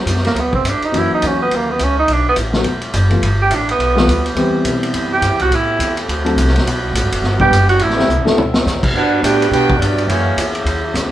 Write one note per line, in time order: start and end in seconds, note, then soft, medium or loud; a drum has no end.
0.00 0.57 D3 medium
0.00 0.57 F#3 soft
0.00 0.57 G3 medium
0.00 0.58 B3 medium
0.00 0.58 F#4 medium
0.06 0.34 F#2 medium
0.06 hi-hat pedal medium
0.06 ride medium
0.16 snare soft
0.25 0.41 A#3 medium
0.25 snare soft
0.25 ride medium
0.34 0.63 D2 medium
0.34 ride medium
0.40 0.54 B3 medium
0.53 0.71 C4 medium
0.53 kick medium
0.64 0.80 G2 loud
0.64 hi-hat pedal medium
0.64 ride medium
0.69 0.86 D4 medium
0.81 1.00 D#4 medium
0.81 muted upright bass stroke soft
0.81 ride soft
0.92 1.09 F#2 medium
0.92 1.71 E3 medium
0.92 1.71 F#3 medium
0.92 1.72 A#3 medium
0.92 1.72 C#4 medium
0.92 1.72 F#4 medium
0.92 ride medium
0.98 1.13 E4 medium
1.11 1.29 D#4 medium
1.11 muted upright bass stroke soft
1.22 1.50 E2 loud
1.22 hi-hat pedal medium
1.22 ride medium
1.27 1.42 C#4 medium
1.42 1.57 B3 medium
1.51 1.78 D#2 medium
1.51 ride medium
1.55 1.72 A#3 medium
1.71 1.85 B3 medium
1.79 2.07 C#2 loud
1.79 hi-hat pedal soft
1.79 ride medium
1.84 1.98 C#4 medium
1.99 2.14 D#4 loud
2.08 2.35 B1 medium
2.08 ride medium
2.13 2.27 D4 medium
2.29 2.34 B3 medium
2.36 2.64 A1 loud
2.36 hi-hat pedal medium
2.36 ride medium
2.53 2.64 D3 medium
2.53 2.64 F#3 medium
2.53 2.64 A3 medium
2.53 2.64 B3 medium
2.53 2.64 F#4 medium
2.53 snare medium
2.64 2.93 E1 medium
2.64 ride medium
2.81 ride medium
2.94 3.21 F#1 loud
2.94 hi-hat pedal medium
2.94 ride medium
3.10 3.20 E3 medium
3.10 3.20 G3 medium
3.10 3.21 A3 medium
3.10 3.21 B3 medium
3.10 3.21 F4 medium
3.10 ride soft
3.22 3.49 G1 medium
3.22 ride medium
3.42 3.56 G4 loud
3.50 3.78 A1 medium
3.50 hi-hat pedal medium
3.50 ride medium
3.55 3.70 D4 medium
3.69 4.34 B3 loud
3.69 ride medium
3.79 4.07 B1 medium
3.79 ride medium
3.95 4.06 E3 medium
3.95 4.06 G3 medium
3.95 4.07 A3 medium
3.95 4.07 B3 medium
3.95 4.07 F4 medium
3.95 snare medium
4.07 4.34 D2 loud
4.07 hi-hat pedal medium
4.07 ride medium
4.26 ride medium
4.35 4.63 E2 medium
4.35 6.07 C3 medium
4.35 5.15 E3 medium
4.35 5.15 G3 medium
4.35 5.50 G3 medium
4.35 5.15 B3 medium
4.35 5.15 C4 medium
4.35 5.50 E4 medium
4.35 5.16 G4 medium
4.35 ride medium
4.65 4.92 B2 medium
4.65 hi-hat pedal medium
4.65 ride medium
4.83 ride medium
4.94 5.21 F#2 medium
4.94 ride medium
5.13 5.38 G4 loud
5.21 5.31 G2 loud
5.21 hi-hat pedal medium
5.21 ride medium
5.31 5.40 E2 medium
5.39 5.50 C2 medium
5.39 5.56 F#4 loud
5.39 ride soft
5.51 5.78 A2 medium
5.51 6.64 A3 medium
5.51 6.08 B3 medium
5.51 6.07 G4 medium
5.51 ride medium
5.55 5.98 E4 loud
5.79 6.07 E2 loud
5.79 hi-hat pedal medium
5.79 ride medium
5.97 ride medium
6.08 6.36 D2 medium
6.08 7.78 D3 medium
6.08 6.64 C4 medium
6.08 7.78 F#4 medium
6.08 ride medium
6.24 6.35 F#3 medium
6.24 6.35 A3 medium
6.24 6.35 C4 medium
6.24 6.36 D4 medium
6.24 6.36 A4 medium
6.24 ride medium
6.36 6.64 C2 loud
6.36 hi-hat pedal medium
6.36 ride medium
6.47 snare soft
6.56 snare medium
6.56 ride medium
6.64 6.92 B1 loud
6.64 8.35 G3 medium
6.64 7.78 B3 medium
6.64 ride medium
6.93 7.02 A1 loud
6.93 hi-hat pedal medium
6.93 ride medium
7.02 7.11 G1 medium
7.12 7.21 F#1 medium
7.12 ride medium
7.22 7.50 G1 medium
7.22 snare soft
7.40 7.50 G3 medium
7.40 7.50 B3 medium
7.40 7.51 D4 medium
7.40 7.50 F#4 medium
7.40 7.67 G4 loud
7.40 7.51 B4 medium
7.40 kick medium
7.51 7.79 F#1 loud
7.51 hi-hat pedal medium
7.51 ride medium
7.69 7.84 F#4 loud
7.69 ride medium
7.79 8.07 A1 loud
7.79 8.36 C3 medium
7.79 8.36 A3 medium
7.79 8.93 E4 medium
7.79 8.27 E4 loud
7.79 ride medium
7.90 snare soft
7.96 8.07 A3 medium
7.96 8.07 C4 medium
7.96 8.07 E4 medium
7.96 8.08 G4 medium
7.96 8.08 C5 medium
7.96 snare medium
8.08 8.18 C2 loud
8.08 hi-hat pedal medium
8.18 8.27 A1 medium
8.25 8.36 G1 medium
8.25 8.35 A3 medium
8.25 8.36 D4 medium
8.25 8.36 E4 medium
8.25 8.36 F#4 medium
8.25 8.36 A4 medium
8.25 snare medium
8.36 8.64 D2 medium
8.36 8.93 D3 medium
8.36 8.93 F#3 medium
8.36 8.93 C4 medium
8.36 mid tom medium
8.54 snare medium
8.66 8.81 E2 loud
8.66 snare medium
8.66 hi-hat pedal medium
8.83 muted upright bass stroke soft
8.83 kick medium
8.83 crash medium
8.94 9.22 G2 medium
8.94 10.07 D3 medium
8.94 10.08 G3 medium
8.94 9.20 B3 medium
8.94 10.07 B3 medium
8.94 9.21 D4 medium
8.94 9.22 D4 loud
8.94 10.07 F#4 medium
8.94 9.21 F#4 medium
8.94 9.22 G4 medium
8.94 9.22 B4 medium
8.94 9.22 F#5 loud
9.22 9.50 A2 loud
9.22 9.48 B3 loud
9.22 9.48 D4 loud
9.22 9.50 D4 medium
9.22 9.49 F#4 medium
9.22 9.48 G4 medium
9.22 9.50 B4 loud
9.22 9.50 G5 loud
9.22 hi-hat pedal medium
9.22 ride medium
9.42 ride medium
9.49 9.78 B2 medium
9.49 9.76 B3 medium
9.49 9.76 D4 medium
9.49 9.79 D4 medium
9.49 9.78 F#4 medium
9.49 9.77 G4 medium
9.49 9.79 B4 medium
9.49 9.79 G5 loud
9.53 ride medium
9.70 kick medium
9.77 10.07 G2 loud
9.77 10.07 F#3 medium
9.77 10.07 B3 medium
9.77 10.09 B3 medium
9.77 10.07 D4 medium
9.77 10.08 F#4 medium
9.77 10.09 G4 medium
9.77 10.09 D5 medium
9.82 hi-hat pedal medium
9.82 ride medium
9.98 ride medium
10.06 10.36 F#2 loud
10.06 11.12 C#3 medium
10.06 10.50 E3 medium
10.06 11.12 F#3 medium
10.06 10.50 A#3 medium
10.06 11.12 A#3 medium
10.06 10.51 A#3 medium
10.06 10.50 C#4 medium
10.06 11.12 E4 medium
10.06 10.51 E4 medium
10.06 10.51 F#4 medium
10.06 10.51 C#5 medium
10.06 ride medium
10.36 10.64 E2 loud
10.36 hi-hat pedal medium
10.36 ride medium
10.55 ride medium
10.65 10.93 D#2 medium
10.65 ride medium
10.94 11.12 C#2 loud
10.94 snare soft
10.94 hi-hat pedal medium
10.94 ride medium